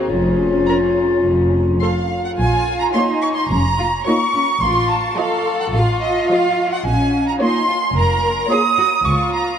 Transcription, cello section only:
0.11 F2
1.24 F2
2.39 F4
2.94 D#4
3.51 C#4
3.79 F4
4.07 D#4
4.34 C#4
4.62 F4
5.18 A4
5.73 F4
6.85 C#4
7.40 D#4
7.67 F4
7.95 A#4
8.51 G#4
8.78 F#4
9.06 F4

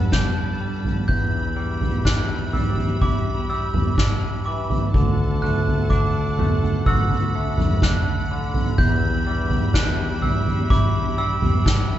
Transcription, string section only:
Already playing: D4 A4 A5 B5
1.09 G4 E5 B5
4.94 A4 F#5 A5
6.87 B5
8.78 D4 G4 E5

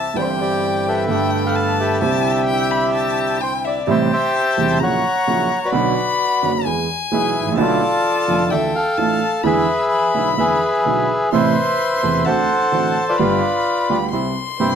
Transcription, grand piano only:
0.15 G1 G2 E3 G3 C4 G4
1.07 G1 G2 D3 A3 B3 G4
2.00 C2 C3 D3 G3 C4
2.04 E4
3.87 A1 A2 C3 G3 A3 E4
4.57 E1 E2 C3 G3 A3 E4
4.80 A#1 A#2 C#3 F#3 A#3 E4
5.27 A#1 A#2 C#3 F#3 A#3 E4
5.72 B1 B2 D3 F#3 B3 F#4
6.42 F#1 F#2 D3 F#3 B3 F#4
6.66 E2 E3 G#3 B3 G#4
7.11 B1 B2 E3 G#3 B3 G#4
7.41 G#1
7.46 A1
7.52 A#1
7.57 B1 B2 D3 A3 B3 F4
8.28 F1 F2 D3 A3 B3 F4
8.52 D2 D3 E3 A3 D4 F4
8.98 A1 A2 E3 A3 D4 F4
9.44 E2 D3 E3 G#3 B3 E4
10.14 B1 B2 D3 G#3 B3 E4
10.37 E2 D3 E3 G#3 B3 E4
10.85 B1 B2 D3 G#3 B3 E4
11.32 A1 A2 C3 A3 B3 E4
12.03 E1 E2 C3 A3 B3 E4
12.26 D2 D3 A3 C4 F#4
12.72 A1 A2 D3 A3 C4 F#4
13.19 G1 G2 D3 G3 B3 F4
13.89 D2 D3 G3 B3 F4
14.12 C2 C3 G3 B3 E4
14.60 G1 G2 C3 G3 B3 E4

